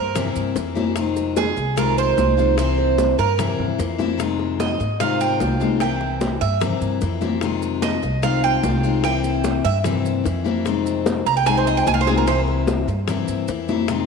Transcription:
Already playing: upright bass G2, cuban tres A#4
0.15 steel-string acoustic guitar C3 E3 A#3 C4 E4, high bongo, high conga, low conga, maracas
0.36 upright bass G2, high conga, maracas
0.55 upright bass F2, steel-string acoustic guitar E3 A#3 C4 E4, high bongo, low bongo, high conga, maracas
0.75 steel-string acoustic guitar E3 A#3 C4 E4, high bongo, high conga, maracas
0.95 steel-string acoustic guitar C3 D#3 G#3 C4 F4, high bongo, high conga, maracas
1.16 high bongo, high conga, maracas
1.37 cuban tres G#4, high bongo, high conga, maracas
1.56 upright bass C2, muted steel-string acoustic guitar stroke, high conga, maracas
1.76 steel-string acoustic guitar C3 D#3 G#3 C4 F4, cuban tres A#4, high bongo, high conga, maracas
1.98 cuban tres C5, high conga, maracas
2.16 upright bass C2, steel-string acoustic guitar D#3 G#3 C4 F4, high bongo, low bongo, high conga, maracas
2.37 steel-string acoustic guitar D#3 G#3 C4 F4, high bongo, maracas
2.57 steel-string acoustic guitar C3 E3 A#3 C4 E4, cuban tres C5, high bongo, maracas
2.78 high bongo, high conga
2.98 high bongo, high conga, maracas
3.18 upright bass G2, cuban tres A#4, muted steel-string acoustic guitar stroke, maracas
3.38 steel-string acoustic guitar C3 E3 A#3 C4 E4, high bongo, high conga, low conga, maracas
3.59 upright bass G2, high conga, low conga
3.78 upright bass F2, steel-string acoustic guitar E3 A#3 C4 E4, high bongo, low bongo, high conga, maracas
3.98 steel-string acoustic guitar E3 A#3 C4 E4, high bongo, high conga, maracas
4.18 steel-string acoustic guitar C3 D#3 G#3 C4 F4, high bongo, high conga, maracas
4.39 high bongo, high conga
4.60 cuban tres D#5, high bongo, high conga, maracas
4.80 upright bass G#2, muted steel-string acoustic guitar stroke, high conga, maracas
5.00 steel-string acoustic guitar C3 D#3 G#3 C4 F4, cuban tres F5, high bongo, high conga, maracas
5.21 cuban tres G5, high conga, maracas
5.40 upright bass C2, steel-string acoustic guitar D#3 G#3 C4 F4, high bongo, low bongo, high conga, maracas
5.60 steel-string acoustic guitar D#3 G#3 C4 F4, high bongo, high conga, maracas
5.80 steel-string acoustic guitar C3 E3 A#3 C4 E4, cuban tres G5, high bongo, high conga, maracas
6.01 high bongo, high conga
6.21 high bongo, high conga, maracas
6.41 upright bass G2, cuban tres E5, muted steel-string acoustic guitar stroke, maracas
6.60 steel-string acoustic guitar C3 E3 A#3 C4 E4, high bongo, high conga, low conga, maracas
6.81 upright bass G2, high conga, maracas
7.01 upright bass F2, steel-string acoustic guitar E3 A#3 C4 E4, high bongo, low bongo, high conga, maracas
7.21 steel-string acoustic guitar E3 A#3 C4 E4, high bongo, high conga, maracas
7.41 steel-string acoustic guitar C3 D#3 G#3 C4 F4, high bongo, high conga, maracas
7.62 high bongo, high conga, maracas
7.82 cuban tres D#5, high bongo, high conga, maracas
8.02 upright bass C2, muted steel-string acoustic guitar stroke, high conga, maracas
8.22 steel-string acoustic guitar C3 D#3 G#3 C4 F4, cuban tres F5, high bongo, high conga, maracas
8.43 cuban tres G5, high conga
8.63 upright bass C2, steel-string acoustic guitar D#3 G#3 C4 F4, high bongo, low bongo, high conga, maracas
8.83 steel-string acoustic guitar D#3 G#3 C4 F4, high bongo, maracas
9.04 steel-string acoustic guitar C3 E3 A#3 C4 E4, cuban tres G5, high bongo, maracas
9.24 high bongo, high conga, maracas
9.44 high bongo, high conga, maracas
9.64 upright bass G2, cuban tres E5, muted steel-string acoustic guitar stroke, maracas
9.84 steel-string acoustic guitar C3 E3 A#3 C4 E4, high bongo, high conga, low conga, maracas
10.05 high conga, maracas
10.24 upright bass F2, steel-string acoustic guitar E3 A#3 C4 E4, high bongo, low bongo, high conga, maracas
10.44 steel-string acoustic guitar E3 A#3 C4 E4, high bongo, high conga, maracas
10.65 steel-string acoustic guitar C3 D#3 G#3 C4 F4, high bongo, high conga, maracas
10.86 high bongo, high conga, maracas
11.06 high bongo, high conga, maracas
11.26 upright bass C2, cuban tres A#5, muted steel-string acoustic guitar stroke, high conga, maracas
11.37 cuban tres G5
11.46 steel-string acoustic guitar C3 D#3 G#3 C4 F4, cuban tres G#5, high bongo, high conga, maracas
11.57 cuban tres C5
11.67 cuban tres D#5, high conga, maracas
11.77 cuban tres G5
11.86 upright bass C2, steel-string acoustic guitar D#3 G#3 C4 F4, cuban tres G#5, high bongo, low bongo, high conga, maracas
11.94 cuban tres F5
12.01 cuban tres C5
12.06 steel-string acoustic guitar D#3 G#3 C4 F4, cuban tres G#4, high bongo, high conga, maracas
12.18 cuban tres A#4
12.27 steel-string acoustic guitar C3 E3 A#3 C4 E4, cuban tres C5, high bongo, high conga, maracas
12.48 high bongo, high conga
12.67 high bongo, high conga, maracas
12.88 upright bass G2, muted steel-string acoustic guitar stroke, maracas
13.07 steel-string acoustic guitar C3 E3 A#3 C4 E4, high bongo, high conga, low conga, maracas
13.28 upright bass G2, high conga, maracas
13.48 upright bass F2, steel-string acoustic guitar E3 A#3 C4 E4, high bongo, low bongo, high conga, maracas
13.68 steel-string acoustic guitar E3 A#3 C4 E4, high bongo, high conga, maracas
13.88 steel-string acoustic guitar C3 D#3 G#3 C4 F4, high bongo, high conga, maracas

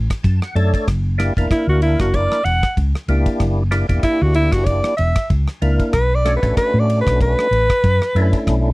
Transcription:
0.10 kick, cross-stick, ride
0.23 fingered electric bass F#2, tonewheel organ A5, kick, ride
0.42 tonewheel organ F#5, cross-stick
0.55 fingered electric bass F#2, tonewheel organ A3 D4 A4 C#5 D5, ride
0.74 kick, ride
0.88 fingered electric bass F#1, kick, cross-stick, ride
1.18 tonewheel organ A#3 D4 E4 G4, cross-stick, ride
1.37 fingered electric bass E1, tonewheel organ A#3 D4 E4 A#4, kick, ride
1.51 alto saxophone E4, muted fingered electric bass stroke, kick, cross-stick, ride
1.67 fingered electric bass D2, alto saxophone F#4
1.82 alto saxophone E4, ride
1.99 fingered electric bass F#1, alto saxophone F#4, kick, cross-stick, ride
2.14 alto saxophone D5, kick, ride
2.32 cross-stick
2.44 fingered electric bass E1, alto saxophone F#5, ride
2.63 kick, cross-stick, ride
2.77 fingered electric bass C#2, kick, ride
2.95 cross-stick
3.08 fingered electric bass C#2, tonewheel organ A#3 D4 E4 G4, ride
3.26 kick, ride
3.40 fingered electric bass F#1, kick, cross-stick, ride
3.71 tonewheel organ A#3 D4 E4 G4, cross-stick, ride
3.89 fingered electric bass E1, tonewheel organ A#3 D4 E4 G4, kick, ride
4.03 alto saxophone E4, kick, cross-stick, ride
4.22 fingered electric bass D2, alto saxophone F#4
4.34 alto saxophone E4, ride
4.52 fingered electric bass F#1, alto saxophone F#4, kick, cross-stick, ride
4.65 alto saxophone D5, kick, ride
4.84 cross-stick
4.97 fingered electric bass E1, alto saxophone E5, ride
5.16 kick, cross-stick, ride
5.30 fingered electric bass C#2, kick, ride
5.48 cross-stick
5.62 fingered electric bass C#2, tonewheel organ A#3 D4 E4 A#4, ride
5.80 kick, ride
5.93 fingered electric bass B1, alto saxophone B4, kick, cross-stick, ride
6.15 alto saxophone D5
6.25 tonewheel organ A3 C#4 D4 F#4, cross-stick, ride
6.37 alto saxophone B4
6.42 fingered electric bass A1, tonewheel organ A3 C#4 D4 F#4, kick, ride
6.57 alto saxophone B4, kick, cross-stick, ride
6.74 fingered electric bass A2
6.80 alto saxophone D5
6.90 ride
7.01 alto saxophone B4
7.07 fingered electric bass B1, kick, cross-stick, ride
7.21 alto saxophone B4, kick, ride
7.39 cross-stick
7.51 fingered electric bass A1, ride
7.70 kick, cross-stick, ride
7.84 fingered electric bass F#2, kick, ride
8.02 cross-stick
8.15 fingered electric bass F#2, tonewheel organ A3 C#4 D4 E4, ride
8.33 kick, ride
8.47 fingered electric bass B1, kick, cross-stick, ride

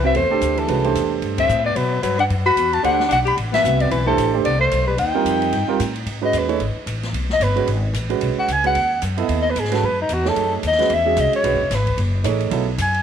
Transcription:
Already playing: upright bass C2
0.04 grand piano C4 F#4 B4 E5, alto saxophone C4, soprano saxophone E5
0.14 upright bass E2, alto saxophone A3, soprano saxophone C5, ride
0.30 grand piano A3 D4 G4 A4, muted upright bass stroke
0.41 upright bass D2, hi-hat pedal, ride
0.56 alto saxophone E3, soprano saxophone A4, ride
0.68 upright bass C2, grand piano G#3 C#4 F#4 B4, ride
0.84 grand piano A3 D4 G4 C5, ride
0.95 upright bass E2, hi-hat pedal, ride
1.22 upright bass G2, ride
1.38 alto saxophone C4, soprano saxophone E5, kick, ride
1.49 upright bass A2, hi-hat pedal
1.64 alto saxophone B3, soprano saxophone D5
1.75 upright bass B2, alto saxophone F#3, soprano saxophone B4, ride
2.02 upright bass G2, alto saxophone F#3, soprano saxophone B4, hi-hat pedal, ride
2.19 alto saxophone D4, soprano saxophone F#5, ride
2.30 upright bass F#2, ride
2.46 alto saxophone F#4, soprano saxophone B5
2.56 upright bass E2, hi-hat pedal, ride
2.72 alto saxophone F#4, soprano saxophone A5, ride
2.83 upright bass D2, grand piano A3 D4 G4 C5, alto saxophone D4, soprano saxophone F#5, ride
3.00 snare
3.09 upright bass B1, alto saxophone D4, soprano saxophone F#5, hi-hat pedal, ride
3.25 alto saxophone G4, soprano saxophone B5, ride
3.37 upright bass A1, ride
3.52 alto saxophone B3, soprano saxophone E5, snare, ride
3.64 upright bass C2, grand piano C4 F#4 B4 E5, hi-hat pedal
3.79 alto saxophone B3, soprano saxophone D5, ride
3.90 upright bass B1, alto saxophone E3, soprano saxophone B4, ride
4.06 alto saxophone E3, grand piano A3 D4 G4 C5, soprano saxophone A4
4.18 upright bass A1, hi-hat pedal, ride
4.34 grand piano A3 D4 G4 C5
4.44 upright bass C2, alto saxophone B3, soprano saxophone D5, ride
4.59 alto saxophone A3, soprano saxophone C5
4.71 upright bass B1, hi-hat pedal, ride
4.87 alto saxophone G3, soprano saxophone B4
4.97 upright bass D#2, alto saxophone D#4, soprano saxophone G5, ride
5.14 grand piano G3 C4 F4 A#4
5.25 upright bass F2, hi-hat pedal, ride
5.42 ride
5.52 upright bass G2, ride
5.68 grand piano G3 C4 F4 A#4
5.79 upright bass A2, hi-hat pedal, ride
5.96 ride
6.06 upright bass G#2, ride
6.21 grand piano G#3 C#4 F#4 B4, soprano saxophone D#5
6.33 upright bass D#2, hi-hat pedal, ride
6.38 soprano saxophone B4
6.48 grand piano A3 D#4 G#4 C#5, ride
6.59 upright bass G#1, ride
6.76 muted upright bass stroke
6.86 upright bass A1, hi-hat pedal, ride
7.03 snare, ride
7.13 upright bass B1, ride
7.30 soprano saxophone D#5, snare
7.40 upright bass G1, soprano saxophone B4, hi-hat pedal, ride
7.56 grand piano G#3 C#4 F#4 B4, ride
7.67 upright bass G#1, ride
7.93 upright bass A1, hi-hat pedal, ride
8.09 grand piano G#3 C#4 F#4 B4, ride
8.21 upright bass B1, ride
8.37 soprano saxophone F#5, muted upright bass stroke
8.48 upright bass C#2, hi-hat pedal, ride
8.52 soprano saxophone G#5
8.64 grand piano G#3 C#4 F#4 B4, soprano saxophone F#5, ride
8.75 upright bass D#2, ride
9.02 upright bass F#2, hi-hat pedal, ride
9.17 grand piano B3 E4 A4 D#5, ride
9.28 upright bass D#2, ride
9.42 soprano saxophone D#5
9.50 soprano saxophone B4
9.55 upright bass G#2, hi-hat pedal, ride
9.60 soprano saxophone G#4
9.65 snare
9.71 grand piano G#3 C#4 F#4 B4, soprano saxophone A4, snare, ride
9.82 upright bass F#2, soprano saxophone B4
10.01 soprano saxophone D#4
10.09 upright bass E2, hi-hat pedal, ride
10.13 soprano saxophone F#4
10.25 grand piano A3 D#4 G#4 C#5, soprano saxophone A4, snare
10.36 upright bass F#2, ride
10.63 upright bass D#2, hi-hat pedal, ride
10.67 soprano saxophone D#5
10.72 snare
10.79 grand piano G#3 C#4 F#4 B4, snare, ride
10.90 upright bass E2, ride
10.94 soprano saxophone E5
11.05 grand piano G#3 C#4 F#4 G#4
11.16 upright bass C2, hi-hat pedal, ride
11.20 soprano saxophone D#5
11.33 soprano saxophone C#5, ride
11.43 upright bass B1, grand piano G#3 C#4 F#4 B4, ride
11.53 upright bass F#1
11.61 upright bass E1
11.70 upright bass G#1, snare, hi-hat pedal, ride
11.75 soprano saxophone B4
11.87 kick, ride
11.97 upright bass F#1, ride
12.24 upright bass A1, grand piano A3 D#4 G#4 C#5, hi-hat pedal, ride
12.40 ride
12.51 upright bass B1, grand piano F#3 B3 E4 A4, ride
12.78 upright bass F#2, soprano saxophone G#5, hi-hat pedal, ride
12.94 ride

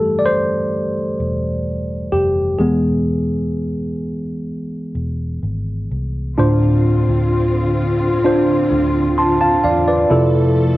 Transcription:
Already playing: fingered electric bass F1, tine electric piano E3 G3 A3 G4 A4
0.19 tine electric piano D5
0.26 tine electric piano C5
1.20 fingered electric bass E1
2.12 fingered electric bass F1, tine electric piano G4
2.59 fingered electric bass E1, tine electric piano E3 G#3 B3 G#4
4.95 fingered electric bass E1
5.43 fingered electric bass G#1
5.91 fingered electric bass C2
6.38 fingered electric bass D2, tine electric piano A2 D4 F4 C5, string section D3 C4 F4
7.09 fingered electric bass D2
8.24 tine electric piano D4 F4 C5
8.71 fingered electric bass D2
9.18 tine electric piano A5 C6
9.41 tine electric piano F5 A5
9.64 fingered electric bass E2, tine electric piano D5 F5
9.88 tine electric piano B4 D5
10.10 fingered electric bass F2, tine electric piano C3 E4 F4 A4, string section F3 A3 A4

